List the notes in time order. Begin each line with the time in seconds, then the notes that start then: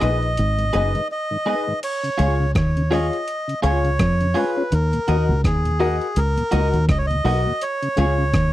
Already playing: D#5
0.00 A#1 G#3 B3 D#4 G#4 B4 D#5, cross-stick, closed hi-hat
0.23 closed hi-hat
0.37 G#1, closed hi-hat
0.59 G#2 D#3, closed hi-hat
0.73 F#1 G#3 B3 D#4 G#4 B4 D#5, closed hi-hat
0.95 G#2 D#3, closed hi-hat
1.12 D#5
1.31 G#2 D#3
1.45 G#3 B3 D#4 G#4 B4 D#5
1.67 G#2 D#3
1.83 C#5, closed hi-hat, crash
2.03 C#3, closed hi-hat
2.18 C#2 G#3 C#4 F4 G#4 C#5 F5, closed hi-hat
2.40 C#3
2.55 D#2 C#5, kick, cross-stick, closed hi-hat
2.77 C#3, closed hi-hat
2.90 G#3 C#4 F4 G#4 C#5 D#5 F5, cross-stick, open hi-hat
3.13 closed hi-hat
3.28 closed hi-hat
3.48 C#3, closed hi-hat
3.62 C#2 G#3 C#4 F4 G#4 C#5 F5, closed hi-hat
3.84 C#3, closed hi-hat
3.99 F2, kick, cross-stick, closed hi-hat
4.21 C#3, closed hi-hat
4.34 G#3 C#4 F4 G#4 B4 C#5 F5, open hi-hat
4.56 C#4 F4, muted clean electric guitar stroke
4.72 D#2 A#4, closed hi-hat
4.93 D#2 A#2, closed hi-hat
5.08 D#2 A#3 D#4 F#4 A#4 D#5 F#5, closed hi-hat
5.29 C#2 D#2 A#2
5.44 D#2 G#4, kick, cross-stick, closed hi-hat
5.65 D#2 A#2, closed hi-hat
5.80 A#3 D#4 F#4 A#4 D#5 F#5, open hi-hat
6.02 closed hi-hat
6.16 C#2 A#4, closed hi-hat
6.37 D#2 A#2, closed hi-hat
6.51 C#2 A#3 D#4 F#4 A#4 D#5 F#5, closed hi-hat
6.73 D#2 A#2, closed hi-hat
6.89 C#2 D#5, kick, cross-stick, closed hi-hat
6.98 C#5
7.07 D#2 A#2 D#5
7.11 closed hi-hat
7.24 B1 A#3 D#4 F#4 A#4 D#5 F#5, open hi-hat
7.47 D#2 A#2
7.61 C#5, closed hi-hat
7.82 C#3, closed hi-hat
7.96 C#2 G#3 C#4 F4 G#4 C#5 F5, closed hi-hat
8.18 C#3
8.34 D#2, kick, cross-stick, closed hi-hat